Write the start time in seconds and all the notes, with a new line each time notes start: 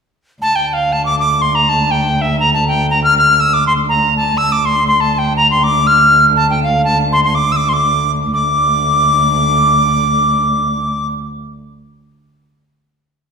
0.42 D2 A5
0.56 G5
0.69 G5
0.73 F5
0.92 A5
1.05 D6
1.19 D6
1.42 C6
1.55 A#5
1.69 A5
1.91 G5
2.18 E5 G5
2.40 A#5
2.54 A5
2.68 G5
2.90 A#5
3.04 F6
3.18 F6
3.40 E6
3.54 D6
3.67 C6
3.89 A#5
4.17 A5
4.38 D2 E6
4.52 D6
4.65 C6
4.87 C6
5.01 A5
5.14 A5
5.18 G5
5.37 A#5
5.51 C6
5.64 D6
5.87 F6
6.36 A5
6.50 G5
6.63 F5
6.85 A5
7.13 C6
7.24 C6
7.35 D6
7.52 E6
7.57 D6
7.69 C6
7.74 D6
8.34 D2 D6